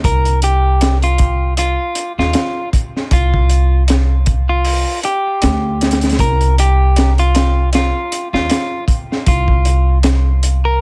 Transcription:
0.04 upright bass C2, clean electric guitar A#4, kick, closed hi-hat
0.25 closed hi-hat
0.42 clean electric guitar G4, closed hi-hat
0.81 snare, closed hi-hat
1.02 clean electric guitar F4, closed hi-hat
1.18 kick, closed hi-hat
1.57 clean electric guitar F4, closed hi-hat
1.95 closed hi-hat
2.18 upright bass D#2, clean electric guitar F4, snare
2.33 snare, closed hi-hat
2.73 kick, closed hi-hat
2.96 snare
3.11 upright bass C2, clean electric guitar F4, kick, closed hi-hat
3.34 kick
3.50 closed hi-hat
3.88 snare, closed hi-hat
4.26 kick, closed hi-hat
4.49 clean electric guitar F4
4.65 open hi-hat
5.03 clean electric guitar G4, closed hi-hat
5.42 upright bass D2, snare, closed hi-hat
5.81 snare, closed hi-hat
5.91 snare, closed hi-hat
6.01 snare, closed hi-hat
6.09 snare, closed hi-hat
6.19 upright bass C2, clean electric guitar A#4, kick, closed hi-hat
6.41 closed hi-hat
6.58 clean electric guitar G4, closed hi-hat
6.96 snare, closed hi-hat
7.18 clean electric guitar F4, closed hi-hat
7.35 snare, closed hi-hat
7.73 clean electric guitar F4, snare, closed hi-hat
8.12 closed hi-hat
8.33 upright bass D#2, clean electric guitar F4, snare
8.50 snare, closed hi-hat
8.88 kick, closed hi-hat
9.12 snare
9.27 upright bass C2, clean electric guitar F4, kick, closed hi-hat
9.48 kick
9.65 closed hi-hat
10.03 snare, closed hi-hat
10.43 closed hi-hat
10.65 clean electric guitar A#4

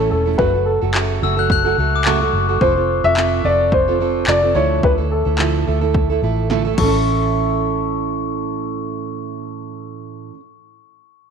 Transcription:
0.00 steel-string acoustic guitar A3 C#4 E4 A4
0.10 fingered electric bass E1, upright piano A4
0.26 steel-string acoustic guitar A3 C#4 E4 A4
0.38 fingered electric bass F#1, steel-string acoustic guitar F#2 C#3 F#3 A3 F#4 A4, upright piano B4, kick
0.54 steel-string acoustic guitar F#3 A3 F#4 A4
0.66 upright piano A4
0.81 fingered electric bass F#1, steel-string acoustic guitar F#3 A3 F#4 A4
0.94 steel-string acoustic guitar F#2 C#3 F#3 A3 F#4 A4, clap
1.22 fingered electric bass F#1, steel-string acoustic guitar F#3 A3 F#4 A4, glockenspiel E6
1.37 steel-string acoustic guitar F#3 A3 F#4 A4, glockenspiel F#6
1.50 glockenspiel F#6, kick
1.65 steel-string acoustic guitar F#3 A3 F#4 A4
1.78 fingered electric bass C#2, steel-string acoustic guitar F#3 A3 F#4 A4
1.96 glockenspiel D6
2.05 steel-string acoustic guitar F#2 C#3 F#3 A3 F#4 A4, glockenspiel C#6, clap
2.21 steel-string acoustic guitar F#3 A3 F#4 A4
2.33 fingered electric bass F#1
2.49 steel-string acoustic guitar F#3 A3 F#4 A4
2.61 fingered electric bass F1, steel-string acoustic guitar F3 C4 F4 A4, upright piano C5, kick
2.76 steel-string acoustic guitar C4 F4 A4
3.04 fingered electric bass F1, steel-string acoustic guitar C4 F4 A4, upright piano E5
3.16 steel-string acoustic guitar F3 C4 F4 A4, clap
3.44 fingered electric bass F1, steel-string acoustic guitar F3 C4 F4 A4, upright piano D5
3.72 upright piano C5, kick
3.88 steel-string acoustic guitar C4 F4 A4
4.00 steel-string acoustic guitar F3 C4 F4 A4
4.27 fingered electric bass F1, steel-string acoustic guitar F3 C4 F4 A4, upright piano D5, clap
4.43 steel-string acoustic guitar C4 F4 A4
4.54 fingered electric bass D2, steel-string acoustic guitar D3 F3 A3 E4 A4, upright piano C#5
4.83 fingered electric bass D2, upright piano B4, kick
4.98 steel-string acoustic guitar A3 E4 A4
5.11 upright piano A4
5.25 fingered electric bass D2, steel-string acoustic guitar A3 E4 A4
5.38 steel-string acoustic guitar D3 F3 A3 E4 A4, clap
5.66 fingered electric bass D2, steel-string acoustic guitar F3 A3 E4 A4
5.81 steel-string acoustic guitar A3 E4 A4
5.94 kick
6.10 steel-string acoustic guitar A3 E4 A4
6.22 fingered electric bass A1, steel-string acoustic guitar F3 A3 E4 A4
6.50 steel-string acoustic guitar D3 F3 A3 E4 A4, snare
6.65 steel-string acoustic guitar A3 E4 A4
6.74 steel-string acoustic guitar A2
6.78 fingered electric bass A1, steel-string acoustic guitar E3 A3, upright piano A4, glockenspiel C#6, kick, crash
6.84 steel-string acoustic guitar C#4 E4
6.89 steel-string acoustic guitar A4

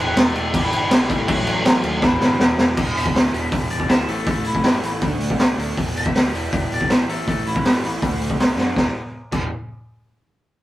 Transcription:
Already playing: picked electric bass E1, overdriven electric guitar E2 B2 E3, lead electric guitar B3 B4
0.15 picked electric bass E1, lead electric guitar A3 A4, snare, crash
0.34 picked electric bass E1, crash
0.54 picked electric bass E1, lead electric guitar G3 G4, kick, crash
0.64 lead electric guitar E3 E4
0.72 picked electric bass G1, crash
0.91 picked electric bass B1, lead electric guitar G3 G4, snare, crash
1.08 picked electric bass A1, overdriven electric guitar A2 E3 A3, kick, crash
1.28 picked electric bass A1, lead electric guitar F#3 F#4, kick, crash
1.46 picked electric bass A1, crash
1.65 picked electric bass A1, snare, crash
1.83 picked electric bass D#2, crash
2.01 picked electric bass E1, overdriven electric guitar E2 B2 E3, lead electric guitar E3 E4, kick, snare
2.20 picked electric bass G1, snare
2.39 picked electric bass E1, snare
2.57 picked electric bass E1, snare
2.77 picked electric bass E1, overdriven electric guitar E2 B2 E3, kick, crash
2.94 picked electric bass E1, lead electric guitar E5, open hi-hat
3.06 kick
3.13 picked electric bass D2, snare, open hi-hat
3.32 picked electric bass E1, overdriven electric guitar E2 B2 E3, open hi-hat
3.52 picked electric bass E1, kick, open hi-hat
3.69 picked electric bass E1, lead electric guitar D5, open hi-hat
3.80 kick
3.88 picked electric bass D2, overdriven electric guitar E2 B2 E3, lead electric guitar E5, snare, open hi-hat
4.07 picked electric bass A1, overdriven electric guitar A2 E3 A3, lead electric guitar A4, open hi-hat
4.26 picked electric bass A1, lead electric guitar A4, kick, open hi-hat
4.44 picked electric bass A1, lead electric guitar E4, open hi-hat
4.55 kick
4.63 picked electric bass G2, overdriven electric guitar A2 E3 A3, snare, open hi-hat
4.83 picked electric bass A1, open hi-hat
5.00 picked electric bass D2, overdriven electric guitar D3 A3 D4, kick, open hi-hat
5.19 picked electric bass D2, open hi-hat
5.30 kick
5.38 picked electric bass C2, snare, open hi-hat
5.57 picked electric bass D2, overdriven electric guitar D3 A3 D4, open hi-hat
5.76 picked electric bass E1, overdriven electric guitar E2 B2 E3, kick, open hi-hat
5.95 picked electric bass E1, lead electric guitar E5, open hi-hat
6.06 kick
6.13 picked electric bass D2, snare, open hi-hat
6.32 picked electric bass E1, overdriven electric guitar E2 B2 E3, open hi-hat
6.53 picked electric bass E1, kick, open hi-hat
6.71 picked electric bass E1, lead electric guitar D5, open hi-hat
6.81 kick
6.89 picked electric bass B1, overdriven electric guitar E2 B2 E3, lead electric guitar E5, snare, open hi-hat
7.08 picked electric bass A1, overdriven electric guitar A2 E3 A3, lead electric guitar A4, open hi-hat
7.27 picked electric bass A1, lead electric guitar A4, kick, open hi-hat
7.46 picked electric bass A1, lead electric guitar E4, open hi-hat
7.56 kick
7.64 picked electric bass G2, overdriven electric guitar A2 E3 A3, snare, open hi-hat
7.82 picked electric bass A1, open hi-hat
8.01 picked electric bass D2, overdriven electric guitar D3 A3 D4, kick, open hi-hat
8.19 picked electric bass D2, open hi-hat
8.30 kick
8.38 picked electric bass C2, snare, open hi-hat
8.56 picked electric bass F#2, overdriven electric guitar D3 A3 D4, snare
8.76 picked electric bass E1, overdriven electric guitar E2 B2 E3, kick, snare
9.32 picked electric bass E1, overdriven electric guitar E2 B2 E3, kick, crash

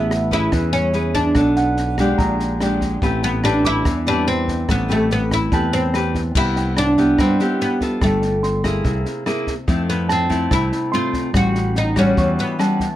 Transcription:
Already playing: fingered electric bass A1, nylon-string guitar A3 C#4 G#4 B4, oud B3, grand piano E5
0.11 cross-stick, snare
0.31 nylon-string guitar C#4 G#4 B4, oud E4, kick, snare
0.52 fingered electric bass E2, nylon-string guitar E3, kick, cross-stick, snare
0.73 oud C#4, snare
0.93 nylon-string guitar C#4 G#4 B4, snare
1.14 oud D4, kick, snare
1.35 fingered electric bass B1, nylon-string guitar B3 D4 A4 C#5, kick, cross-stick, snare
1.56 grand piano F#5, snare
1.77 snare
1.98 nylon-string guitar G#3 D4 G4, kick, cross-stick, snare
2.18 fingered electric bass A#1, nylon-string guitar A#2, grand piano A#5, kick, snare
2.40 snare
2.60 nylon-string guitar G#3 D4 G4, cross-stick, snare
2.81 kick, snare
3.02 fingered electric bass A1, nylon-string guitar A3 C4 G4 B4, kick, snare
3.23 oud B3, snare
3.44 nylon-string guitar C4 G4 B4, oud D4, cross-stick, snare
3.64 oud E4, grand piano D6, kick, snare
3.85 fingered electric bass E2, nylon-string guitar E3, kick, cross-stick, snare
4.06 nylon-string guitar C4 G4 B4, oud D4, snare
4.27 oud C4, snare
4.48 kick, snare
4.69 fingered electric bass A1, nylon-string guitar A3, oud B3, kick, cross-stick, snare
4.88 oud A3, nylon-string guitar C4 G4 B4, snare
5.10 oud B3, snare
5.31 oud E4, kick, cross-stick, snare
5.52 fingered electric bass E2, nylon-string guitar E3 C4 G4 B4, grand piano A5, kick, snare
5.73 oud C4, snare
5.94 nylon-string guitar C4 G4 B4, cross-stick, snare
6.14 kick, snare
6.35 fingered electric bass C2, nylon-string guitar C3 B3 E4 G4, oud E4, kick, snare, crash
6.56 grand piano G5, snare
6.77 oud D4, cross-stick, snare
6.98 nylon-string guitar B3 E4 G4, kick, snare
7.18 fingered electric bass G2, nylon-string guitar G3, oud C4, grand piano B5, kick, cross-stick, snare
7.40 nylon-string guitar B3 E4 G4, snare
7.61 oud B3, snare
7.81 nylon-string guitar F4 A4, kick, snare
8.01 fingered electric bass G1, nylon-string guitar G3, oud A3, kick, cross-stick, snare
8.22 snare
8.43 grand piano C6, snare
8.64 nylon-string guitar A#3 E4 G#4, kick, cross-stick, snare
8.84 fingered electric bass C2, nylon-string guitar C3, kick, snare
9.06 snare
9.26 nylon-string guitar A#3 E4 G#4, cross-stick, snare
9.47 kick, snare
9.68 fingered electric bass F2, nylon-string guitar F3 A3 C4 E4, kick, snare
9.89 oud B3, snare
10.09 oud C4, grand piano A5, cross-stick, snare
10.29 nylon-string guitar A3 C4 E4, kick, snare
10.51 fingered electric bass C2, nylon-string guitar C3, oud E4, kick, cross-stick, snare
10.72 snare
10.92 nylon-string guitar A3 C4, oud F4, grand piano C6, snare
11.13 kick, snare
11.34 fingered electric bass A1, nylon-string guitar A2 G3 C#4 F#4, oud F#4, kick, cross-stick, snare
11.55 snare
11.76 oud D#4, snare
11.96 nylon-string guitar G3 C#4 F#4, oud C#4, kick, cross-stick, snare
12.17 fingered electric bass E2, nylon-string guitar E3, grand piano C#6, kick, snare
12.38 oud B3, snare
12.59 nylon-string guitar G3 C#4 F#4, grand piano A5, cross-stick, snare
12.80 kick, snare

